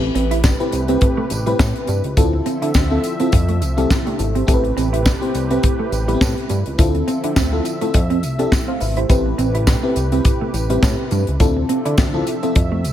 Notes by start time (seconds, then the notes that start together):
Already playing: A1 C3 A3 C4 E4 G4 B4
0.02 muted clean electric guitar stroke
0.15 A1 C4, closed hi-hat
0.31 E4, closed hi-hat
0.44 D4, kick, snare, tambourine
0.60 C4 E4 G4 B4, muted clean electric guitar stroke, closed hi-hat
0.72 C2, closed hi-hat, tambourine
0.88 C4 E4 G4 B4, closed hi-hat
1.01 kick, closed hi-hat
1.17 A3
1.30 A1, muted clean electric guitar stroke, closed hi-hat, tambourine
1.46 G3 C4 E4 G4 B4, closed hi-hat
1.59 A2, kick, snare, tambourine
1.76 closed hi-hat
1.87 G2 G3, closed hi-hat, tambourine
2.04 C#2, closed hi-hat
2.17 D2 D3 F3 C4 E4 F4 A4 E5, kick, closed hi-hat, tambourine
2.33 muted clean electric guitar stroke
2.46 C4, closed hi-hat, tambourine
2.62 D3 E4, closed hi-hat
2.74 D2 D4, kick, snare, tambourine
2.90 C4 E4 F4 A4, muted clean electric guitar stroke
3.04 closed hi-hat, tambourine
3.20 C4 E4 F4 A4, closed hi-hat
3.32 F2 C3 A3, kick, closed hi-hat, tambourine
3.48 A3, closed hi-hat
3.62 C2, muted clean electric guitar stroke, closed hi-hat, tambourine
3.77 G3 C4 E4 G4 A4, closed hi-hat
3.90 B3, kick, snare, tambourine
4.06 A3 D4 G4, closed hi-hat
4.19 G#1 E4 A4, muted clean electric guitar stroke, closed hi-hat, tambourine
4.35 C4 G4 C5, closed hi-hat
4.47 A1 C3 C4 E4 G4 A4 B4, kick, closed hi-hat, tambourine
4.54 B4
4.64 muted clean electric guitar stroke, closed hi-hat
4.77 A1 C4, closed hi-hat, tambourine
4.93 E4, closed hi-hat
5.06 D4, kick, snare, tambourine
5.21 C4 E4 G4 C5, muted clean electric guitar stroke, closed hi-hat
5.35 C2, closed hi-hat, tambourine
5.50 C4 E4 G4 B4, closed hi-hat
5.63 kick, closed hi-hat
5.79 A3
5.92 A1, muted clean electric guitar stroke, closed hi-hat, tambourine
6.08 G3 B3 E4 G4 B4, closed hi-hat
6.14 C4
6.21 A2, kick, snare, tambourine
6.38 closed hi-hat
6.49 G2 G3, closed hi-hat, tambourine
6.66 C#2, closed hi-hat
6.78 D2 D3 F3 C4 E4 F4 A4 E5, kick, closed hi-hat, tambourine
6.95 muted clean electric guitar stroke, closed hi-hat
7.08 C4, closed hi-hat, tambourine
7.24 D3 E4, closed hi-hat
7.36 D2 C4, kick, snare, tambourine
7.52 C4 E4 F4 A4, muted clean electric guitar stroke
7.65 closed hi-hat, tambourine
7.81 A3 C4 E4 F4 A4, closed hi-hat
7.94 F2 C3 A3, kick, closed hi-hat, tambourine
8.10 C4, closed hi-hat
8.23 C2, muted clean electric guitar stroke, closed hi-hat, tambourine
8.39 C4 D4 E4 G4 A4, closed hi-hat
8.52 kick, snare, tambourine
8.68 C4 C5 F5
8.80 G#1 B4 E5, muted clean electric guitar stroke, open hi-hat, tambourine
8.97 E4 G4 C5, closed hi-hat
9.09 A1 C4 E4 G4 B4, kick, closed hi-hat, tambourine
9.26 muted clean electric guitar stroke
9.38 A1 C4, closed hi-hat, tambourine
9.54 E4, closed hi-hat
9.67 D4, kick, snare, tambourine
9.83 C4 E4 G4 B4, muted clean electric guitar stroke
9.96 C2, closed hi-hat, tambourine
10.12 C4 E4 G4 B4, closed hi-hat
10.25 kick, closed hi-hat, tambourine
10.41 A3
10.54 A1, muted clean electric guitar stroke, closed hi-hat, tambourine
10.69 G3 C4 E4 G4 B4, closed hi-hat
10.83 A2, kick, snare, tambourine
11.11 G2 G3, closed hi-hat, tambourine
11.27 C#2, closed hi-hat
11.40 D2 F3 C4 D4 E4 F4 A4 E5, kick, closed hi-hat, tambourine
11.57 muted clean electric guitar stroke
11.69 C4, closed hi-hat
11.85 D3 E4, closed hi-hat
11.97 D2 D4, kick, snare, tambourine
12.14 C4 E4 F4 A4, muted clean electric guitar stroke
12.27 closed hi-hat, tambourine
12.43 C4 E4 F4 A4, closed hi-hat
12.55 F2 A3, kick, closed hi-hat, tambourine
12.72 A3
12.84 C2, muted clean electric guitar stroke, closed hi-hat, tambourine